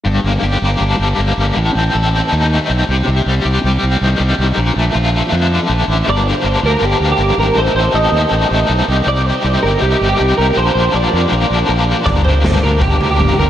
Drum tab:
SD |----------------|----------------|----------------|----------------|
T2 |----------------|----------------|----------------|----------------|
FT |----------------|----------------|----------------|----------------|
BD |----------------|----------------|----------------|----------------|

SD |----------------|----------------|----------------|----------------|
T2 |----------------|----------------|----------------|----------------|
FT |----------------|----------------|----------------|----------------|
BD |----------------|----------------|----------------|----------------|

SD |----o-----------|
T2 |----o-------o---|
FT |o-o--o--o-o--o--|
BD |o-------o-------|